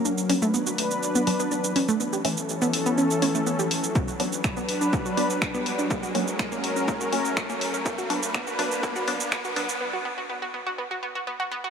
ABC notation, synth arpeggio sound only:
X:1
M:4/4
L:1/16
Q:1/4=123
K:Bm
V:1 name="Synth arpeggio sound"
D z C A, B, F z3 B, z B, D z C A, | B, G z3 B, z B, C z C A, B, G z2 | B, F z3 B, z D B, F z3 B, z D | ^A, F z3 A, z C A, F z3 A, z C |
B, F z2 B, F z2 B, F z2 B, F z2 | B, F B, F B, F B, F B, F B, F B, F B, F |]